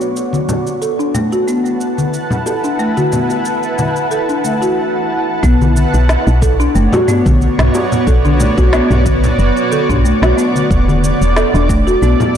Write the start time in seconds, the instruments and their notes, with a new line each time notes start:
Already playing: ambient pad B3 F#4 C#5 D5, marimba B3
0.01 shaker
0.16 ambient pad E4 B4 F#5 A5, shaker
0.33 high conga, shaker
0.49 high conga, low conga, shaker
0.67 high bongo, shaker
0.82 marimba A4, shaker
0.99 marimba D4, shaker
1.15 marimba A3, low conga, shaker
1.32 marimba F#4, shaker
1.48 marimba B3, shaker
1.66 shaker
1.81 shaker
1.98 high conga, shaker
2.14 shaker
2.31 low conga, shaker
2.46 marimba A4, high bongo, shaker
2.64 marimba D4, shaker
2.79 marimba A3, shaker
2.97 marimba F#4, high conga, shaker
3.12 marimba B3, high bongo, low conga, shaker
3.30 high bongo, shaker
3.45 shaker
3.63 shaker
3.79 high conga, low conga, shaker
3.96 shaker
4.11 marimba A4, shaker
4.29 marimba D4, shaker
4.44 marimba A3, high conga, shaker
4.62 marimba F#4, shaker
5.43 fm bass B1, marimba B3, ambient pad B3 F#4 C#5 D5, kick, shaker
5.62 high conga, shaker
5.76 high conga, shaker
5.94 fm bass B1, shaker
6.09 snare, shaker
6.27 fm bass B1, shaker
6.42 marimba A4, kick, shaker
6.60 marimba D4, shaker
6.75 fm bass F#1, marimba A3, shaker
6.93 marimba F#4, high bongo, low conga, shaker
7.08 marimba B3, mid tom, high bongo, shaker
7.26 fm bass B1, kick, high conga, low conga, shaker
7.42 shaker
7.59 fm bass B1, snare, mid tom, shaker
7.74 high bongo, shaker
7.92 low conga, shaker
8.07 fm bass B1, marimba A4, kick, shaker
8.25 marimba D4, high conga, shaker
8.40 marimba A3, low conga, shaker
8.58 fm bass B1, marimba F#4, kick, high bongo, shaker
8.73 marimba B3, snare, shaker
8.91 fm bass B1, mid tom, high bongo, shaker
9.06 kick, high conga, shaker
9.24 low conga, shaker
9.39 fm bass F#1, shaker
9.57 shaker
9.72 marimba A4, high conga, shaker
9.89 fm bass B1, marimba D4, kick, mid tom, high bongo, shaker
10.04 marimba A3, shaker
10.22 fm bass B1, marimba F#4, snare, shaker
10.37 marimba B3, shaker
10.55 high conga, shaker
10.71 fm bass E1, ambient pad E4 A4, kick, shaker
10.88 high conga, shaker
11.03 high conga, shaker
11.21 fm bass E1, shaker
11.36 marimba A4, snare, shaker
11.54 fm bass E1, marimba D4, shaker
11.69 marimba A3, kick, shaker
11.87 marimba F#4, shaker
12.02 fm bass B1, marimba B3, shaker
12.20 high bongo, low conga, shaker